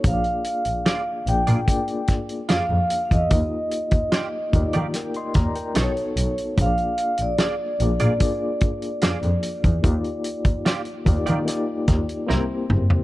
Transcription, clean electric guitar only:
X:1
M:4/4
L:1/16
Q:1/4=74
K:Eb
V:1 name="Clean electric guitar"
z4 [FAd] z2 [FAd] z4 [FAd] z3 | z4 [FGd] z2 [FGd] z4 [^D=A^c] z3 | z4 [FAd] z2 [FAd] z4 [FAd] z3 | z4 [FGd] z2 [FGd] z4 [C=EB] z3 |]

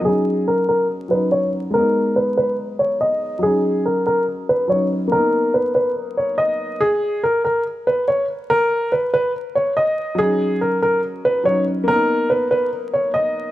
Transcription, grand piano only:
X:1
M:4/4
L:1/8
Q:1/4=142
K:Ebm
V:1 name="Grand piano"
[G,DE]4- [G,DE] [G,DE]3 | [A,CE]8 | [G,DE]6 [G,DE]2 | [^A,=B,^D]8 |
z8 | z8 | [G,DE]6 [G,DE]2 | [^A,=B,^D]8 |]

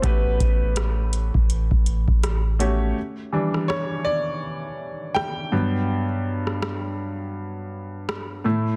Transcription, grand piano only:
X:1
M:4/4
L:1/8
Q:"Swing 16ths" 1/4=82
K:Glyd
V:1 name="Grand piano"
[A,CFGB]6- [A,CFGB] [A,CFGc] | z2 c d3 g2- | g6- g z |]
V:2 name="Grand piano" clef=bass
z8 | z [E,G,D]3 z3 [G,,F,B,] | z6 z [A,,A,E] |]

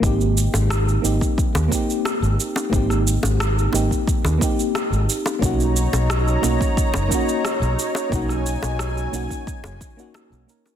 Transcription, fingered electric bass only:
X:1
M:4/4
L:1/16
Q:1/4=89
K:Ab
V:1 name="Fingered electric bass" clef=bass
A,,,2 z A,,,2 z A,,, z2 E,, z3 A,,, z2 | A,,,2 z A,,,2 z A,,, z2 E,, z3 A,,, z2 | =B,,,2 z B,,,2 z B,,, z2 ^F,,, z3 B,,, z2 | =B,,,2 z B,,,2 z B,,, z2 ^F,,, z3 B,,, z2 |]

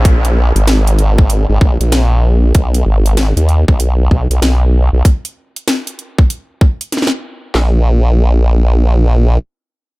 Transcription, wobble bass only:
X:1
M:4/4
L:1/16
Q:"Swing 16ths" 1/4=96
K:Cblyd
V:1 name="Wobble bass" clef=bass
B,,,3 A,,,6 A,,, B,,, B,,,4- B,,, | =B,,,2 ^G,,,3 ^D,,2 B,,,3 B,,, B,,, B,,,3 B,,, | z16 | B,,,12 z4 |]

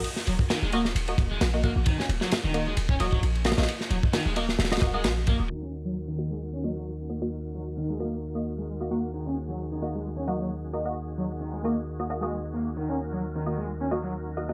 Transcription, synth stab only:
X:1
M:4/4
L:1/16
Q:"Swing 16ths" 1/4=132
K:Ebm
V:1 name="Synth stab"
z6 [B,Ge] z2 [B,Ge] z3 [B,Ge] [B,Gg]2 | z6 [B,Ge] z3 [B,Ge]2 z2 [B,Ge] [B,Ge] | z6 [B,Ge] z2 [B,Ge] [B,Ge] [B,Ge]4- [B,Ge] | z6 [B,Ge] z3 [B,Ge]2 z2 [B,Ge] [B,Ge] |
z6 [B,Ge] z2 [B,Ge] z3 [B,Ge] [B,Gg]2 | z6 [B,Ge] z3 [B,Ge]2 z2 [B,Ge] [B,Ge] | z6 [B,Ge] z2 [B,Ge] [B,Ge] [B,Ge]4- [B,Ge]- | [B,Ge]6 [B,Ge] z3 [B,Ge]2 z2 [B,Ge] [B,Ge] |]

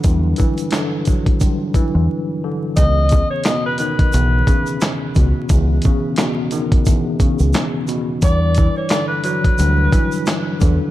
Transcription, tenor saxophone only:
X:1
M:4/4
L:1/16
Q:"Swing 16ths" 1/4=88
K:C#m
V:1 name="Tenor saxophone"
z16 | d3 c d B B6- B z3 | z16 | =d3 c d B B6- B z3 |]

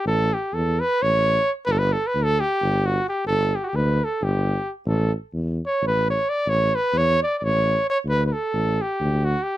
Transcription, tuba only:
X:1
M:7/8
L:1/8
Q:1/4=131
K:Amix
V:1 name="Tuba" clef=bass
A,,,2 E,,2 A,,,3 | G,,,2 D,,2 G,,,3 | G,,,2 D,,2 G,,,3 | A,,,2 E,,2 A,,,3 |
A,,,2 E,,2 A,,,3 | D,,2 A,,,2 D,,3 |]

